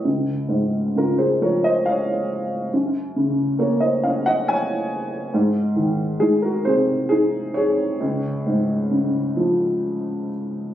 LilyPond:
<<
  \new Staff \with { instrumentName = "Upright piano" } { \time 3/4 \key des \major \tempo 4 = 68 r4 <f' bes'>16 <aes' c''>16 <bes' des''>16 <c'' ees''>16 <des'' f''>8 r8 | r4 <bes' des''>16 <c'' ees''>16 <des'' f''>16 <ees'' ges''>16 <des'' aes''>8 r8 | r4 <ees' aes'>16 <ges' bes'>16 <aes' c''>8 <ees' aes'>8 <aes' des''>8~ | <aes' des''>2~ <aes' des''>8 r8 | }
  \new Staff \with { instrumentName = "Upright piano" } { \clef bass \time 3/4 \key des \major des,8 aes,8 des8 f4. | ges,8 des8 bes8 des'4. | aes,8 ees8 aes8 c4. | des,8 aes,8 des8 f4. | }
>>